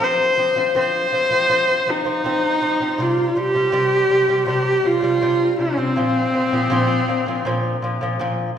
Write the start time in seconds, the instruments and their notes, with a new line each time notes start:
0.00 lute F3 C4, horsehead fiddle C5
0.37 lute F3 C4
0.56 lute F3 C4
0.75 lute F3 C4, horsehead fiddle C5
1.12 lute F3 C4
1.30 lute F3 C4
1.49 lute F3 C4
1.87 lute F3 C4, horsehead fiddle D#4
2.05 lute F3 C4
2.24 lute F3 C4
2.61 lute F3 C4
2.80 lute F3 C4
2.98 lute C3 G3, horsehead fiddle F4
3.35 lute C3 G3, horsehead fiddle G4
3.54 lute C3 G3
3.72 lute C3 G3
4.09 lute C3 G3
4.28 lute C3 G3
4.46 lute C3 G3, horsehead fiddle G4
4.84 lute C3 G3, horsehead fiddle F4
5.02 lute C3 G3
5.21 lute C3 G3
5.59 lute C3 G3, horsehead fiddle C4
5.77 lute C3 G3
5.96 lute A#2 F3
6.33 lute A#2 F3
6.52 lute A#2 F3
6.70 lute A#2 F3
7.08 lute A#2 F3
7.26 lute A#2 F3
7.45 lute A#2 F3
7.82 lute A#2 F3
8.01 lute A#2 F3
8.19 lute A#2 F3